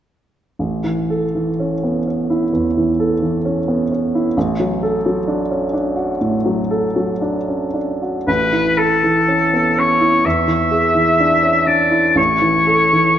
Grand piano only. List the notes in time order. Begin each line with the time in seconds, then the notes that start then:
0.59 A1
0.84 E3
1.10 A4
1.35 E3
1.60 C#4
1.84 B3
2.07 C#4
2.30 E4
2.53 E2
2.77 E3
3.00 A4
3.22 E3
3.45 C#4
3.68 B3
3.92 C#4
4.15 E4
4.37 A1
4.60 F#3
4.83 A4
5.06 F#3
5.28 D4
5.51 C#4
5.73 D4
5.96 F#4
6.21 A2
6.46 F#3
6.71 A4
6.96 F#3
7.22 D4
7.48 C#4
7.74 D4
8.02 F#4
8.27 A1
8.52 E3
8.77 A4
9.04 E3
9.28 C#4
9.53 B3
9.77 C#4
10.01 E4
10.25 E2
10.48 E3
10.71 G#4
10.94 E3
11.20 D4
11.43 C#4
11.67 D4
11.91 E4
12.15 A1
12.42 E3
12.67 A4
12.93 E3